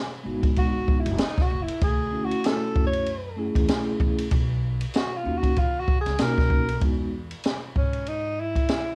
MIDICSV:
0, 0, Header, 1, 5, 480
1, 0, Start_track
1, 0, Tempo, 625000
1, 1395, Time_signature, 4, 2, 24, 8
1, 6874, End_track
2, 0, Start_track
2, 0, Title_t, "Tenor saxophone"
2, 0, Program_c, 0, 66
2, 448, Note_on_c, 0, 66, 98
2, 766, Note_on_c, 0, 64, 78
2, 777, Note_off_c, 0, 66, 0
2, 924, Note_on_c, 0, 63, 93
2, 935, Note_off_c, 0, 64, 0
2, 1085, Note_on_c, 0, 66, 88
2, 1097, Note_off_c, 0, 63, 0
2, 1244, Note_on_c, 0, 64, 98
2, 1256, Note_off_c, 0, 66, 0
2, 1400, Note_off_c, 0, 64, 0
2, 1406, Note_on_c, 0, 68, 84
2, 1724, Note_on_c, 0, 66, 90
2, 1735, Note_off_c, 0, 68, 0
2, 1887, Note_on_c, 0, 69, 101
2, 1898, Note_off_c, 0, 66, 0
2, 2195, Note_off_c, 0, 69, 0
2, 2200, Note_on_c, 0, 73, 107
2, 2647, Note_off_c, 0, 73, 0
2, 3805, Note_on_c, 0, 66, 82
2, 3968, Note_on_c, 0, 65, 77
2, 3980, Note_off_c, 0, 66, 0
2, 4132, Note_on_c, 0, 66, 87
2, 4144, Note_off_c, 0, 65, 0
2, 4293, Note_on_c, 0, 65, 89
2, 4305, Note_off_c, 0, 66, 0
2, 4453, Note_on_c, 0, 66, 94
2, 4465, Note_off_c, 0, 65, 0
2, 4604, Note_off_c, 0, 66, 0
2, 4612, Note_on_c, 0, 68, 88
2, 4770, Note_on_c, 0, 70, 108
2, 4781, Note_off_c, 0, 68, 0
2, 5242, Note_off_c, 0, 70, 0
2, 5969, Note_on_c, 0, 61, 86
2, 6209, Note_on_c, 0, 63, 95
2, 6220, Note_off_c, 0, 61, 0
2, 6450, Note_on_c, 0, 64, 94
2, 6461, Note_off_c, 0, 63, 0
2, 6874, Note_off_c, 0, 64, 0
2, 6874, End_track
3, 0, Start_track
3, 0, Title_t, "Vibraphone"
3, 0, Program_c, 1, 11
3, 178, Note_on_c, 1, 56, 80
3, 188, Note_on_c, 1, 59, 69
3, 197, Note_on_c, 1, 63, 68
3, 205, Note_on_c, 1, 66, 87
3, 866, Note_off_c, 1, 56, 0
3, 871, Note_off_c, 1, 59, 0
3, 876, Note_off_c, 1, 63, 0
3, 880, Note_off_c, 1, 66, 0
3, 1621, Note_on_c, 1, 57, 68
3, 1627, Note_on_c, 1, 61, 69
3, 1636, Note_on_c, 1, 64, 61
3, 1647, Note_on_c, 1, 66, 73
3, 2308, Note_off_c, 1, 57, 0
3, 2311, Note_off_c, 1, 61, 0
3, 2315, Note_off_c, 1, 64, 0
3, 2321, Note_off_c, 1, 66, 0
3, 2580, Note_on_c, 1, 57, 76
3, 2589, Note_on_c, 1, 61, 64
3, 2597, Note_on_c, 1, 64, 67
3, 2606, Note_on_c, 1, 68, 82
3, 3267, Note_off_c, 1, 57, 0
3, 3272, Note_off_c, 1, 61, 0
3, 3276, Note_off_c, 1, 64, 0
3, 3280, Note_off_c, 1, 68, 0
3, 4017, Note_on_c, 1, 58, 66
3, 4025, Note_on_c, 1, 61, 65
3, 4033, Note_on_c, 1, 63, 62
3, 4042, Note_on_c, 1, 66, 84
3, 4206, Note_off_c, 1, 58, 0
3, 4210, Note_off_c, 1, 61, 0
3, 4214, Note_off_c, 1, 63, 0
3, 4218, Note_off_c, 1, 66, 0
3, 4741, Note_on_c, 1, 58, 64
3, 4747, Note_on_c, 1, 61, 61
3, 4758, Note_on_c, 1, 63, 58
3, 4765, Note_on_c, 1, 66, 74
3, 5099, Note_off_c, 1, 58, 0
3, 5102, Note_off_c, 1, 61, 0
3, 5108, Note_off_c, 1, 63, 0
3, 5111, Note_off_c, 1, 66, 0
3, 5222, Note_on_c, 1, 56, 72
3, 5230, Note_on_c, 1, 59, 63
3, 5239, Note_on_c, 1, 63, 63
3, 5247, Note_on_c, 1, 66, 72
3, 5408, Note_off_c, 1, 56, 0
3, 5412, Note_off_c, 1, 59, 0
3, 5417, Note_off_c, 1, 63, 0
3, 5421, Note_off_c, 1, 66, 0
3, 6874, End_track
4, 0, Start_track
4, 0, Title_t, "Upright bass"
4, 0, Program_c, 2, 32
4, 197, Note_on_c, 2, 32, 83
4, 785, Note_off_c, 2, 32, 0
4, 815, Note_on_c, 2, 30, 96
4, 897, Note_off_c, 2, 30, 0
4, 1156, Note_on_c, 2, 30, 93
4, 1269, Note_off_c, 2, 30, 0
4, 1396, Note_on_c, 2, 38, 99
4, 1786, Note_off_c, 2, 38, 0
4, 2120, Note_on_c, 2, 42, 82
4, 2706, Note_off_c, 2, 42, 0
4, 2730, Note_on_c, 2, 40, 103
4, 2814, Note_off_c, 2, 40, 0
4, 3074, Note_on_c, 2, 40, 111
4, 3188, Note_off_c, 2, 40, 0
4, 3316, Note_on_c, 2, 35, 113
4, 3706, Note_off_c, 2, 35, 0
4, 4036, Note_on_c, 2, 39, 86
4, 4624, Note_off_c, 2, 39, 0
4, 4654, Note_on_c, 2, 37, 91
4, 4736, Note_off_c, 2, 37, 0
4, 4755, Note_on_c, 2, 47, 95
4, 4950, Note_off_c, 2, 47, 0
4, 4993, Note_on_c, 2, 35, 99
4, 5189, Note_off_c, 2, 35, 0
4, 5236, Note_on_c, 2, 40, 88
4, 5626, Note_off_c, 2, 40, 0
4, 5961, Note_on_c, 2, 44, 76
4, 6648, Note_off_c, 2, 44, 0
4, 6874, End_track
5, 0, Start_track
5, 0, Title_t, "Drums"
5, 331, Note_on_c, 9, 36, 96
5, 331, Note_on_c, 9, 51, 50
5, 408, Note_off_c, 9, 36, 0
5, 408, Note_off_c, 9, 51, 0
5, 432, Note_on_c, 9, 51, 56
5, 440, Note_on_c, 9, 36, 84
5, 509, Note_off_c, 9, 51, 0
5, 517, Note_off_c, 9, 36, 0
5, 675, Note_on_c, 9, 36, 99
5, 752, Note_off_c, 9, 36, 0
5, 811, Note_on_c, 9, 51, 64
5, 888, Note_off_c, 9, 51, 0
5, 908, Note_on_c, 9, 44, 57
5, 908, Note_on_c, 9, 51, 83
5, 914, Note_on_c, 9, 38, 122
5, 985, Note_off_c, 9, 44, 0
5, 985, Note_off_c, 9, 51, 0
5, 991, Note_off_c, 9, 38, 0
5, 1057, Note_on_c, 9, 36, 105
5, 1060, Note_on_c, 9, 38, 35
5, 1134, Note_off_c, 9, 36, 0
5, 1137, Note_off_c, 9, 38, 0
5, 1292, Note_on_c, 9, 51, 69
5, 1368, Note_off_c, 9, 51, 0
5, 1392, Note_on_c, 9, 51, 68
5, 1395, Note_on_c, 9, 36, 117
5, 1469, Note_off_c, 9, 51, 0
5, 1472, Note_off_c, 9, 36, 0
5, 1775, Note_on_c, 9, 51, 58
5, 1852, Note_off_c, 9, 51, 0
5, 1874, Note_on_c, 9, 44, 50
5, 1874, Note_on_c, 9, 51, 67
5, 1890, Note_on_c, 9, 38, 119
5, 1950, Note_off_c, 9, 44, 0
5, 1950, Note_off_c, 9, 51, 0
5, 1967, Note_off_c, 9, 38, 0
5, 2118, Note_on_c, 9, 36, 108
5, 2195, Note_off_c, 9, 36, 0
5, 2253, Note_on_c, 9, 51, 52
5, 2329, Note_off_c, 9, 51, 0
5, 2353, Note_on_c, 9, 51, 56
5, 2430, Note_off_c, 9, 51, 0
5, 2729, Note_on_c, 9, 36, 87
5, 2733, Note_on_c, 9, 51, 56
5, 2806, Note_off_c, 9, 36, 0
5, 2810, Note_off_c, 9, 51, 0
5, 2830, Note_on_c, 9, 44, 59
5, 2830, Note_on_c, 9, 51, 80
5, 2836, Note_on_c, 9, 38, 107
5, 2907, Note_off_c, 9, 44, 0
5, 2907, Note_off_c, 9, 51, 0
5, 2913, Note_off_c, 9, 38, 0
5, 3072, Note_on_c, 9, 36, 105
5, 3149, Note_off_c, 9, 36, 0
5, 3214, Note_on_c, 9, 51, 70
5, 3291, Note_off_c, 9, 51, 0
5, 3311, Note_on_c, 9, 51, 69
5, 3314, Note_on_c, 9, 36, 104
5, 3388, Note_off_c, 9, 51, 0
5, 3391, Note_off_c, 9, 36, 0
5, 3692, Note_on_c, 9, 51, 60
5, 3769, Note_off_c, 9, 51, 0
5, 3791, Note_on_c, 9, 44, 48
5, 3791, Note_on_c, 9, 51, 62
5, 3808, Note_on_c, 9, 38, 112
5, 3868, Note_off_c, 9, 44, 0
5, 3868, Note_off_c, 9, 51, 0
5, 3885, Note_off_c, 9, 38, 0
5, 4171, Note_on_c, 9, 36, 78
5, 4173, Note_on_c, 9, 51, 53
5, 4248, Note_off_c, 9, 36, 0
5, 4250, Note_off_c, 9, 51, 0
5, 4273, Note_on_c, 9, 51, 57
5, 4279, Note_on_c, 9, 36, 87
5, 4350, Note_off_c, 9, 51, 0
5, 4356, Note_off_c, 9, 36, 0
5, 4514, Note_on_c, 9, 36, 99
5, 4591, Note_off_c, 9, 36, 0
5, 4653, Note_on_c, 9, 51, 57
5, 4656, Note_on_c, 9, 38, 34
5, 4730, Note_off_c, 9, 51, 0
5, 4733, Note_off_c, 9, 38, 0
5, 4750, Note_on_c, 9, 44, 64
5, 4750, Note_on_c, 9, 51, 85
5, 4756, Note_on_c, 9, 38, 113
5, 4827, Note_off_c, 9, 44, 0
5, 4827, Note_off_c, 9, 51, 0
5, 4833, Note_off_c, 9, 38, 0
5, 4898, Note_on_c, 9, 36, 100
5, 4904, Note_on_c, 9, 38, 32
5, 4975, Note_off_c, 9, 36, 0
5, 4980, Note_off_c, 9, 38, 0
5, 4992, Note_on_c, 9, 36, 100
5, 5069, Note_off_c, 9, 36, 0
5, 5134, Note_on_c, 9, 51, 63
5, 5211, Note_off_c, 9, 51, 0
5, 5233, Note_on_c, 9, 51, 64
5, 5235, Note_on_c, 9, 36, 103
5, 5309, Note_off_c, 9, 51, 0
5, 5312, Note_off_c, 9, 36, 0
5, 5613, Note_on_c, 9, 51, 55
5, 5690, Note_off_c, 9, 51, 0
5, 5711, Note_on_c, 9, 44, 47
5, 5711, Note_on_c, 9, 51, 66
5, 5728, Note_on_c, 9, 38, 112
5, 5788, Note_off_c, 9, 44, 0
5, 5788, Note_off_c, 9, 51, 0
5, 5804, Note_off_c, 9, 38, 0
5, 5958, Note_on_c, 9, 36, 102
5, 6035, Note_off_c, 9, 36, 0
5, 6092, Note_on_c, 9, 51, 45
5, 6168, Note_off_c, 9, 51, 0
5, 6194, Note_on_c, 9, 51, 55
5, 6271, Note_off_c, 9, 51, 0
5, 6570, Note_on_c, 9, 36, 70
5, 6574, Note_on_c, 9, 51, 51
5, 6647, Note_off_c, 9, 36, 0
5, 6651, Note_off_c, 9, 51, 0
5, 6670, Note_on_c, 9, 44, 54
5, 6670, Note_on_c, 9, 51, 67
5, 6677, Note_on_c, 9, 38, 105
5, 6747, Note_off_c, 9, 44, 0
5, 6747, Note_off_c, 9, 51, 0
5, 6753, Note_off_c, 9, 38, 0
5, 6874, End_track
0, 0, End_of_file